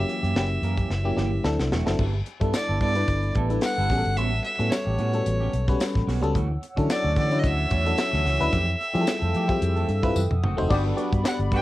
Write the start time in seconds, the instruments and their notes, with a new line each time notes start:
Already playing: fm electric piano F#3 A#3 C#4 E4 G4, fiddle E5
0.08 clean electric guitar E3 A#3 C#4 G4, closed hi-hat
0.22 fingered electric bass F#2, clean electric guitar E3 A#3 C#4 G4, closed hi-hat
0.35 fingered electric bass F#1, fm electric piano F#3 A#3 C#4 E4 G4, muted clean electric guitar stroke, snare
0.50 muted clean electric guitar stroke
0.62 fingered electric bass F#2, clean electric guitar E3 A#3 C#4 A#4, closed hi-hat
0.77 clean electric guitar E3 A#3 C#4 G4, kick, closed hi-hat
0.90 fingered electric bass F#1, muted clean electric guitar stroke, snare
1.04 clean electric guitar E3 A#3 C#4 G4, fm electric piano F#3 A#3 C#4 E4 G4
1.16 fingered electric bass G1, clean electric guitar E3 A#3 C#4 G4, fm electric piano F#3 A#3 C#4 E4 G4, snare
1.32 muted clean electric guitar stroke
1.43 fingered electric bass D2, fm electric piano F#3 C4 D4 E4 A4, snare
1.59 fingered electric bass C2, muted clean electric guitar stroke, snare
1.72 fingered electric bass E1, clean electric guitar E3 A3 C4 F#4, snare
1.85 fingered electric bass F#1, fm electric piano F#3 C4 D4 E4 A4, muted clean electric guitar stroke, snare
1.99 fingered electric bass G1, clean electric guitar G3 B3 E4 A4, kick, crash
2.14 muted clean electric guitar stroke
2.26 muted clean electric guitar stroke, closed hi-hat
2.40 fingered electric bass G2, fm electric piano G3 B3 D4 E4 A4, clean electric guitar G3 B3 E4 A4, kick, closed hi-hat
2.54 fiddle D5, muted clean electric guitar stroke, snare, closed hi-hat, tambourine
2.68 fingered electric bass G1, clean electric guitar G3 B3 E4 A4
2.80 fingered electric bass G2, clean electric guitar G3 B3 E4 A4, fiddle D5, kick, closed hi-hat
2.95 fm electric piano G3 B3 D4 E4 B4, muted clean electric guitar stroke, closed hi-hat
3.08 fingered electric bass G1, muted clean electric guitar stroke, kick, closed hi-hat
3.22 muted clean electric guitar stroke, closed hi-hat
3.35 fingered electric bass A1, clean electric guitar G3 B3 E4 A4, kick, closed hi-hat
3.49 fm electric piano G3 B3 D4 E4 A4, clean electric guitar G3 B3 E4 B4, closed hi-hat
3.61 fiddle F#5, muted clean electric guitar stroke, snare, closed hi-hat, tambourine
3.77 fingered electric bass G1, clean electric guitar G3 B3 E4 A4
3.89 fingered electric bass A1, clean electric guitar G3 B3 C#4 F#4, fm electric piano G3 B3 C#4 F#4 G#4, kick, snare, open hi-hat
3.98 fm electric piano A4
4.04 fingered electric bass G1, muted clean electric guitar stroke, closed hi-hat
4.16 fingered electric bass A1, clean electric guitar G3 B3 C#4 F#4, fiddle E5, closed hi-hat
4.31 muted clean electric guitar stroke
4.44 fiddle E5, muted clean electric guitar stroke, closed hi-hat
4.58 fingered electric bass A2, fm electric piano G3 B3 C#4 F#4 A4, clean electric guitar G3 B3 C#4 F#4, closed hi-hat
4.70 fiddle C#5, muted clean electric guitar stroke, snare, closed hi-hat, tambourine
4.86 fingered electric bass A1, clean electric guitar G3 B3 C#4 G4
4.98 fingered electric bass A2, clean electric guitar G3 B3 C#4 F#4, closed hi-hat
5.13 fm electric piano G3 B3 C#4 F#4 A4, muted clean electric guitar stroke, closed hi-hat
5.26 fingered electric bass A1, muted clean electric guitar stroke, closed hi-hat
5.40 clean electric guitar G3 B3 C#4 G4
5.53 fingered electric bass B1, muted clean electric guitar stroke, closed hi-hat
5.68 fm electric piano G3 B3 C#4 F#4 B4, muted clean electric guitar stroke, kick, closed hi-hat
5.80 muted clean electric guitar stroke, snare, closed hi-hat, tambourine
5.95 fingered electric bass A1, muted clean electric guitar stroke, kick, snare
6.07 fingered electric bass B1, clean electric guitar G3 B3 C#4 F#4, snare, open hi-hat
6.21 fingered electric bass C#2, fm electric piano G3 B3 C#4 F#4 A4, muted clean electric guitar stroke, closed hi-hat
6.34 fingered electric bass D2, clean electric guitar E3 A3 C#4 F#4, analog synth pad C#5 F#5 E6, kick, closed hi-hat
6.49 muted clean electric guitar stroke
6.61 muted clean electric guitar stroke, closed hi-hat
6.76 fingered electric bass D3, clean electric guitar E3 A3 C#4 F#4, fm electric piano F#3 C#4 D4 E4 A4, kick, closed hi-hat
6.89 fiddle D5, muted clean electric guitar stroke, snare, closed hi-hat, tambourine
7.04 fingered electric bass D2, clean electric guitar E3 A3 C#4 F#4
7.16 fingered electric bass D3, clean electric guitar E3 A3 C#4 F#4, fiddle D5, kick, closed hi-hat
7.31 fm electric piano F#3 C#4 D4 E4 F#4, muted clean electric guitar stroke, closed hi-hat
7.39 fiddle D#5
7.44 fingered electric bass D2, fiddle E5, muted clean electric guitar stroke, kick, closed hi-hat
7.58 muted clean electric guitar stroke
7.70 fingered electric bass E2, clean electric guitar E3 A3 C#4 F#4, kick, closed hi-hat
7.85 clean electric guitar E3 A3 C#4 A4, fm electric piano F#3 C#4 D4 E4 A4, closed hi-hat
7.97 muted clean electric guitar stroke, snare, closed hi-hat, tambourine
8.11 fingered electric bass D2, clean electric guitar E3 A3 C#4 F#4, snare
8.24 fingered electric bass C#2, clean electric guitar E3 A3 C#4 F#4, snare, open hi-hat
8.39 fingered electric bass D2, fm electric piano F#3 C#4 D4 E4 B4, muted clean electric guitar stroke, closed hi-hat
8.52 fingered electric bass F2, clean electric guitar E3 A3 C4 G4, analog synth pad A4 G5, kick, closed hi-hat
8.67 muted clean electric guitar stroke
8.80 muted clean electric guitar stroke, closed hi-hat
8.93 clean electric guitar E3 A3 C4 G4, fingered electric bass F3, fm electric piano G3 C4 E4 F4 G#4, closed hi-hat
9.01 fm electric piano A4
9.07 muted clean electric guitar stroke, snare, closed hi-hat, tambourine
9.22 fingered electric bass F2, clean electric guitar E3 A3 C4 A4, closed hi-hat
9.34 clean electric guitar E3 A3 C4 G4, fingered electric bass F3, closed hi-hat
9.48 fm electric piano G3 C4 E4 F4 G4, muted clean electric guitar stroke, kick, closed hi-hat
9.62 fingered electric bass F2, muted clean electric guitar stroke, closed hi-hat
9.76 clean electric guitar E3 A3 C4 A4, closed hi-hat
9.88 fingered electric bass G2, muted clean electric guitar stroke, closed hi-hat
10.03 fm electric piano G3 C4 E4 F4 B4, kick, closed hi-hat
10.16 fingered electric bass F#2, analog synth pad F#5 D#6, muted clean electric guitar stroke, high tom, tambourine
10.31 fingered electric bass F2, muted clean electric guitar stroke, mid tom
10.43 fingered electric bass F#1, clean electric guitar D#3 A3 C4 F#4, mid tom
10.57 fingered electric bass F1, fm electric piano A3 C4 D#4 F#4 C5, muted clean electric guitar stroke, floor tom
10.69 fingered electric bass G1, analog synth pad G3 D5 B5, horn section G3 F#4 B4, fm electric piano B3 D4 F#4 G4 D5, muted clean electric guitar stroke, kick, crash
10.84 clean electric guitar F#3 B3 D4 A4
10.96 clean electric guitar F#3 B3 D4 F#4, fm electric piano B3 D4 F#4 G4 D5, closed hi-hat
11.12 fingered electric bass G2, muted clean electric guitar stroke, kick, closed hi-hat
11.23 fm electric piano B3 D4 G4 D5, fiddle F#5, snare, tambourine
11.39 fingered electric bass G1, muted clean electric guitar stroke, closed hi-hat
11.51 fingered electric bass G2, clean electric guitar F#3 B3 D4 F#4, horn section G3 F#4 B4, fiddle G5, kick, closed hi-hat